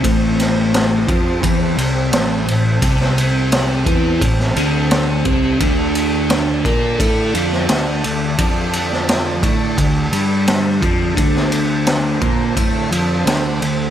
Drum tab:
RD |x-x-x-x-x-x-x-x-|x-x-x-x-x-x-x-x-|x-x-x-x-x-x-x-x-|x-x-x-x-x-x-x-x-|
SD |--o-o-------o---|-o--o----o--o---|----o------oo---|---oo-------o---|
BD |o-----o-o-------|o-----o-o-----o-|o-----o-o-------|o-----o-o-----o-|

RD |x-x-x-x-x-x-x-x-|
SD |-o--o-------o---|
BD |o-----o-o-------|